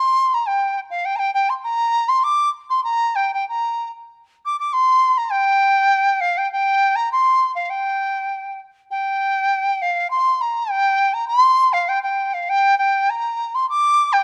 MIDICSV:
0, 0, Header, 1, 2, 480
1, 0, Start_track
1, 0, Tempo, 598802
1, 398, Time_signature, 2, 2, 24, 8
1, 11412, End_track
2, 0, Start_track
2, 0, Title_t, "Dizi"
2, 0, Program_c, 0, 73
2, 0, Note_on_c, 0, 84, 88
2, 273, Note_on_c, 0, 82, 73
2, 285, Note_off_c, 0, 84, 0
2, 373, Note_on_c, 0, 79, 76
2, 385, Note_off_c, 0, 82, 0
2, 618, Note_off_c, 0, 79, 0
2, 618, Note_on_c, 0, 79, 62
2, 641, Note_off_c, 0, 79, 0
2, 723, Note_on_c, 0, 77, 74
2, 844, Note_on_c, 0, 79, 83
2, 856, Note_off_c, 0, 77, 0
2, 928, Note_on_c, 0, 82, 74
2, 940, Note_off_c, 0, 79, 0
2, 942, Note_on_c, 0, 79, 87
2, 954, Note_off_c, 0, 82, 0
2, 1068, Note_off_c, 0, 79, 0
2, 1073, Note_on_c, 0, 79, 82
2, 1198, Note_on_c, 0, 84, 65
2, 1210, Note_off_c, 0, 79, 0
2, 1229, Note_off_c, 0, 84, 0
2, 1315, Note_on_c, 0, 82, 96
2, 1672, Note_on_c, 0, 84, 87
2, 1684, Note_off_c, 0, 82, 0
2, 1793, Note_on_c, 0, 86, 99
2, 1805, Note_off_c, 0, 84, 0
2, 1997, Note_off_c, 0, 86, 0
2, 2164, Note_on_c, 0, 84, 79
2, 2271, Note_off_c, 0, 84, 0
2, 2276, Note_on_c, 0, 82, 89
2, 2529, Note_on_c, 0, 79, 78
2, 2541, Note_off_c, 0, 82, 0
2, 2659, Note_off_c, 0, 79, 0
2, 2676, Note_on_c, 0, 79, 68
2, 2785, Note_off_c, 0, 79, 0
2, 2796, Note_on_c, 0, 82, 77
2, 3132, Note_off_c, 0, 82, 0
2, 3570, Note_on_c, 0, 86, 81
2, 3659, Note_off_c, 0, 86, 0
2, 3682, Note_on_c, 0, 86, 76
2, 3791, Note_on_c, 0, 84, 88
2, 3804, Note_off_c, 0, 86, 0
2, 4148, Note_on_c, 0, 82, 76
2, 4160, Note_off_c, 0, 84, 0
2, 4260, Note_on_c, 0, 79, 91
2, 4272, Note_off_c, 0, 82, 0
2, 4976, Note_on_c, 0, 77, 87
2, 4988, Note_off_c, 0, 79, 0
2, 5111, Note_on_c, 0, 79, 76
2, 5123, Note_off_c, 0, 77, 0
2, 5214, Note_off_c, 0, 79, 0
2, 5230, Note_on_c, 0, 79, 94
2, 5577, Note_on_c, 0, 82, 85
2, 5589, Note_off_c, 0, 79, 0
2, 5685, Note_off_c, 0, 82, 0
2, 5709, Note_on_c, 0, 84, 86
2, 6027, Note_off_c, 0, 84, 0
2, 6054, Note_on_c, 0, 77, 64
2, 6171, Note_on_c, 0, 79, 75
2, 6183, Note_off_c, 0, 77, 0
2, 6893, Note_off_c, 0, 79, 0
2, 7140, Note_on_c, 0, 79, 82
2, 7870, Note_on_c, 0, 77, 77
2, 7882, Note_off_c, 0, 79, 0
2, 8094, Note_off_c, 0, 77, 0
2, 8100, Note_on_c, 0, 84, 89
2, 8345, Note_on_c, 0, 82, 78
2, 8357, Note_off_c, 0, 84, 0
2, 8578, Note_on_c, 0, 79, 90
2, 8590, Note_off_c, 0, 82, 0
2, 8927, Note_on_c, 0, 82, 78
2, 8939, Note_off_c, 0, 79, 0
2, 9037, Note_off_c, 0, 82, 0
2, 9040, Note_on_c, 0, 84, 103
2, 9401, Note_on_c, 0, 77, 84
2, 9413, Note_off_c, 0, 84, 0
2, 9527, Note_on_c, 0, 79, 81
2, 9539, Note_off_c, 0, 77, 0
2, 9635, Note_off_c, 0, 79, 0
2, 9642, Note_on_c, 0, 79, 67
2, 9889, Note_on_c, 0, 77, 73
2, 9901, Note_off_c, 0, 79, 0
2, 10014, Note_on_c, 0, 79, 93
2, 10026, Note_off_c, 0, 77, 0
2, 10241, Note_off_c, 0, 79, 0
2, 10246, Note_on_c, 0, 79, 78
2, 10500, Note_on_c, 0, 82, 89
2, 10512, Note_off_c, 0, 79, 0
2, 10859, Note_on_c, 0, 84, 76
2, 10871, Note_off_c, 0, 82, 0
2, 10969, Note_off_c, 0, 84, 0
2, 10975, Note_on_c, 0, 86, 105
2, 11324, Note_on_c, 0, 79, 84
2, 11336, Note_off_c, 0, 86, 0
2, 11412, Note_off_c, 0, 79, 0
2, 11412, End_track
0, 0, End_of_file